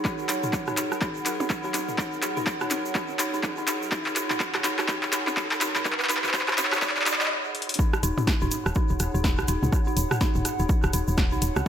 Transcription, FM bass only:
0.29 D#1
0.68 D#1
0.92 D#1
1.16 D#1
1.26 D#1
1.40 D#1
1.64 D#2
1.89 D#1
2.22 D#1
2.85 D#1
3.09 D#1
3.19 D#1
3.34 D#1
3.58 D#2
3.82 D#1
4.16 D#1
5.13 D#1
5.51 D#2
8.03 D#1
8.42 D#1
8.66 D#1
8.90 D#1
9.00 D#1
9.14 D#1
9.38 C#2
9.48 D#1
9.63 C#2
9.97 D#1
10.35 D#1
10.60 D#1
10.84 D#1
10.93 D#1
11.08 D#1
11.32 C#2
11.42 D#1
11.56 C#2

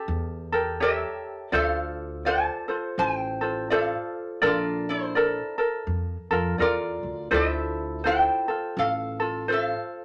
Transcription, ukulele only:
Already playing: G4 A4
0.52 G4 A4 A#4
0.80 G4 A4 A#4 C#5
1.52 F4 A4 C5 D5
2.25 F4 A4 C5 D5
2.68 F4 A4 C5
3.41 F4 A4 C5
3.70 F4 A4 C5 D5
4.42 A4 A#4 D5
5.15 A4 A#4 D5
5.58 A4 A#4
6.31 F4 A4 A#4
6.58 F4 A4 A#4 D5
7.31 E4 F4 A4 C5
8.04 E4 F4 A4 C5
8.48 F4 A4
9.20 F4 A4
9.48 F4 A4 C5

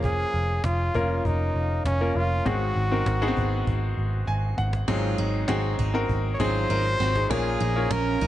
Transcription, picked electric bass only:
Already playing: F1
0.34 F1
0.64 F1
0.94 F1
1.25 F1
1.54 F1
1.85 F1
2.15 F1
2.46 G#1
2.76 G#1
3.06 G#1
3.37 G#1
3.67 G#1
3.97 G#1
4.28 G#1
4.58 G#1
4.88 G#1
5.19 G#1
5.49 G#1
5.79 G#1
6.09 G#1
6.40 G#1
6.70 G#1
7.00 G#1
7.31 A#1
7.61 A#1
7.91 A#1
8.21 A#1

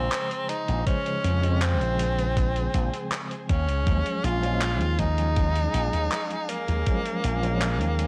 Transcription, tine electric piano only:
Already playing: C#3 F3 G#3 C5
0.86 C#3 F3 G#3 C5
1.42 C#3 F3 G#3 C4
3.86 F3 F#3 G#3 C#4
4.43 F3 F#3 G#3 C#4
6.86 F3 F#3 G#3 C#4
7.42 F3 F#3 G#3 C#4

